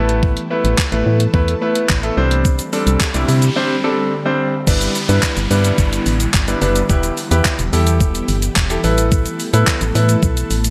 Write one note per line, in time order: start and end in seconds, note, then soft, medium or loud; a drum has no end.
0.00 0.38 A1 loud
0.00 2.13 E3 medium
0.00 0.39 A3 medium
0.00 2.15 A3 medium
0.00 0.39 B3 medium
0.00 2.15 B3 medium
0.00 0.39 E4 medium
0.00 2.15 A4 medium
0.00 0.40 B4 loud
0.00 0.21 A5 medium
0.09 closed hi-hat medium
0.23 kick loud
0.37 closed hi-hat medium
0.50 0.77 A3 medium
0.50 0.77 B3 medium
0.50 0.77 E4 medium
0.50 0.77 B4 medium
0.64 0.75 A1 medium
0.64 closed hi-hat medium
0.78 kick loud
0.78 clap loud
0.92 1.03 A1 loud
0.92 1.19 A3 medium
0.92 1.19 B3 medium
0.92 1.19 E4 medium
0.92 1.19 B4 medium
0.92 closed hi-hat medium
1.06 1.28 A2 loud
1.20 closed hi-hat medium
1.34 1.55 E2 loud
1.34 1.52 A3 medium
1.34 1.52 B3 medium
1.34 1.52 E4 medium
1.34 1.52 B4 loud
1.34 kick loud
1.48 closed hi-hat medium
1.61 1.88 A3 medium
1.61 1.88 B3 medium
1.61 1.88 E4 medium
1.61 1.89 B4 medium
1.75 closed hi-hat medium
1.89 2.11 A1 medium
1.89 kick loud
1.89 clap loud
2.03 2.17 A3 medium
2.03 2.17 B3 medium
2.03 2.17 E4 medium
2.03 2.17 A4 medium
2.03 closed hi-hat medium
2.17 2.60 C2 loud
2.17 4.65 D3 medium
2.17 2.62 G3 medium
2.17 4.65 G3 medium
2.17 2.62 C4 medium
2.17 4.65 C4 medium
2.17 2.62 D4 medium
2.17 4.65 G4 medium
2.17 2.62 C5 loud
2.31 closed hi-hat medium
2.45 kick loud
2.45 noise sweep medium
2.45 shaker medium
2.59 closed hi-hat medium
2.59 shaker medium
2.73 2.99 G3 medium
2.73 3.00 C4 medium
2.73 3.00 D4 medium
2.73 3.00 A4 medium
2.73 open hi-hat medium
2.73 shaker soft
2.87 2.97 C2 medium
2.87 closed hi-hat medium
2.87 shaker medium
3.00 kick loud
3.00 clap loud
3.00 shaker medium
3.14 3.25 C2 loud
3.14 3.41 G3 medium
3.14 3.41 C4 medium
3.14 3.41 D4 medium
3.14 3.41 E4 medium
3.14 closed hi-hat medium
3.14 shaker medium
3.29 3.50 C3 loud
3.29 open hi-hat medium
3.29 shaker medium
3.42 closed hi-hat medium
3.42 shaker medium
3.56 3.74 G3 medium
3.56 3.74 C4 medium
3.56 3.74 D4 medium
3.56 3.74 C5 loud
3.84 4.11 G3 medium
3.84 4.11 C4 medium
3.84 4.11 D4 medium
3.84 4.11 A4 loud
4.25 4.52 G3 medium
4.25 4.52 C4 medium
4.25 4.52 D4 medium
4.25 4.53 C5 medium
4.67 4.89 G1 loud
4.67 6.87 D3 medium
4.67 4.94 G3 medium
4.67 6.87 G3 medium
4.67 4.94 B3 medium
4.67 10.70 B3 medium
4.67 4.94 D4 medium
4.67 6.87 E4 medium
4.67 4.94 E4 medium
4.67 4.94 B4 loud
4.67 kick loud
4.67 crash loud
4.67 downlifter medium
4.67 shaker medium
4.81 closed hi-hat medium
4.81 shaker medium
4.95 open hi-hat medium
4.95 shaker medium
5.09 5.20 G2 medium
5.09 5.36 G3 medium
5.09 5.36 B3 medium
5.09 5.36 D4 medium
5.09 5.36 E4 medium
5.09 5.36 B4 medium
5.09 closed hi-hat medium
5.09 shaker medium
5.23 kick loud
5.23 clap loud
5.23 clap medium
5.23 shaker medium
5.37 5.47 G1 loud
5.37 closed hi-hat medium
5.37 shaker medium
5.50 5.72 G2 loud
5.50 6.13 G3 medium
5.50 6.13 B3 medium
5.50 6.13 D4 medium
5.50 6.13 E4 medium
5.50 6.13 B4 loud
5.50 open hi-hat medium
5.50 shaker medium
5.64 closed hi-hat medium
5.64 shaker medium
5.78 6.00 G1 loud
5.78 kick loud
5.78 shaker medium
5.93 closed hi-hat medium
5.93 shaker medium
6.06 6.28 A1 medium
6.06 open hi-hat medium
6.06 shaker medium
6.20 closed hi-hat medium
6.20 shaker medium
6.34 6.55 G1 loud
6.34 kick loud
6.34 clap loud
6.34 clap medium
6.34 shaker medium
6.48 6.57 G3 medium
6.48 6.57 B3 medium
6.48 6.57 D4 medium
6.48 6.57 E4 medium
6.48 6.57 B4 medium
6.48 closed hi-hat medium
6.48 shaker medium
6.61 6.83 F#1 loud
6.61 6.79 G3 medium
6.61 6.79 B3 medium
6.61 6.80 D4 medium
6.61 6.80 E4 medium
6.61 6.80 B4 loud
6.61 open hi-hat medium
6.61 shaker medium
6.76 closed hi-hat medium
6.76 shaker medium
6.89 7.11 E1 loud
6.89 10.70 E3 medium
6.89 8.82 G3 medium
6.89 7.16 E4 medium
6.89 8.82 G4 medium
6.89 7.16 G4 medium
6.89 7.16 B4 loud
6.89 kick loud
6.89 shaker medium
7.03 closed hi-hat medium
7.03 shaker medium
7.17 open hi-hat medium
7.17 shaker medium
7.31 7.42 E2 loud
7.31 7.58 E4 medium
7.31 7.58 G4 medium
7.31 7.58 B4 medium
7.31 closed hi-hat medium
7.31 shaker medium
7.45 kick loud
7.45 clap medium
7.45 clap loud
7.45 shaker medium
7.59 7.70 E1 loud
7.59 closed hi-hat medium
7.59 shaker medium
7.72 8.02 E2 loud
7.72 8.35 E4 medium
7.72 8.35 G4 medium
7.72 8.35 A4 medium
7.72 open hi-hat medium
7.72 shaker medium
7.87 closed hi-hat medium
7.87 shaker medium
8.00 8.22 E1 loud
8.00 kick loud
8.00 shaker medium
8.15 closed hi-hat medium
8.15 shaker medium
8.28 8.50 G1 medium
8.28 open hi-hat medium
8.28 shaker medium
8.42 closed hi-hat medium
8.42 shaker medium
8.56 8.78 E1 loud
8.56 kick loud
8.56 clap medium
8.56 clap loud
8.56 shaker medium
8.70 8.79 E4 medium
8.70 8.79 G4 medium
8.70 8.79 A4 medium
8.70 closed hi-hat medium
8.70 shaker medium
8.84 9.27 A1 loud
8.84 10.70 A3 medium
8.84 9.39 E4 medium
8.84 9.40 A4 medium
8.84 10.70 A4 medium
8.84 9.40 B4 loud
8.84 open hi-hat medium
8.84 shaker medium
8.98 closed hi-hat medium
8.98 shaker medium
9.12 kick loud
9.12 shaker medium
9.26 closed hi-hat medium
9.26 shaker medium
9.40 open hi-hat medium
9.40 shaker soft
9.53 9.64 A2 medium
9.53 9.80 E4 medium
9.53 9.80 A4 medium
9.53 9.80 B4 medium
9.53 closed hi-hat medium
9.53 shaker medium
9.67 kick loud
9.67 clap medium
9.67 clap loud
9.67 shaker medium
9.81 9.92 A1 loud
9.81 closed hi-hat medium
9.81 shaker medium
9.95 10.17 A2 loud
9.95 10.57 E4 medium
9.95 10.57 A4 medium
9.95 10.58 B4 loud
9.95 open hi-hat medium
9.95 shaker medium
10.09 closed hi-hat medium
10.09 shaker medium
10.23 10.44 B1 loud
10.23 kick loud
10.23 shaker medium
10.37 closed hi-hat medium
10.37 shaker medium
10.51 10.70 A1 medium
10.51 open hi-hat medium
10.51 shaker medium
10.64 closed hi-hat medium
10.64 shaker medium